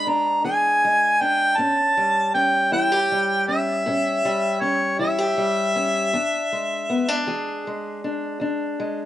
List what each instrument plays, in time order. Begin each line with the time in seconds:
Already playing: steel-string acoustic guitar G#3 G#4, harmonica B5
0.07 steel-string acoustic guitar D4, harmonica A#5
0.44 steel-string acoustic guitar E3 G#4, harmonica G#5
0.85 steel-string acoustic guitar G#3
1.21 steel-string acoustic guitar D4, harmonica G5
1.57 steel-string acoustic guitar A2 C#4, harmonica A5
1.97 steel-string acoustic guitar G3
2.34 steel-string acoustic guitar C#4, harmonica G5
2.72 steel-string acoustic guitar E3 E4, harmonica G5
2.92 steel-string acoustic guitar G4
3.12 steel-string acoustic guitar G3
3.48 steel-string acoustic guitar C#4, harmonica E5
3.86 steel-string acoustic guitar A2 C#4
4.25 steel-string acoustic guitar G3
4.61 steel-string acoustic guitar C#4, harmonica C#5
4.99 steel-string acoustic guitar E3 E4, harmonica E5
5.18 steel-string acoustic guitar G4
5.38 steel-string acoustic guitar G3
5.76 steel-string acoustic guitar C#4
6.13 steel-string acoustic guitar E2 D4
6.52 steel-string acoustic guitar G#3
6.90 steel-string acoustic guitar B3
7.08 steel-string acoustic guitar D4
7.27 steel-string acoustic guitar E3 G#4
7.67 steel-string acoustic guitar G#3
8.04 steel-string acoustic guitar D4
8.40 steel-string acoustic guitar E2 D4
8.80 steel-string acoustic guitar G#3